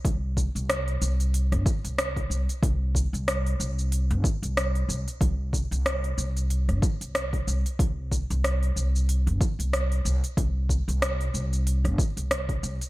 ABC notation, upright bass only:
X:1
M:4/4
L:1/16
Q:"Swing 16ths" 1/4=93
K:none
V:1 name="Upright bass" clef=bass
C,,3 C,,3 C,,3 G,,, z C,,3 C,, z | C,,3 C,,3 C,,3 G,,, z C,,3 C,, z | C,,3 C,,3 C,,3 G,,, z C,,3 C,, z | C,,3 C,,3 C,,3 G,,, z C,,3 C,, z |
C,,3 C,,3 C,,3 G,,, z C,,3 C,, z |]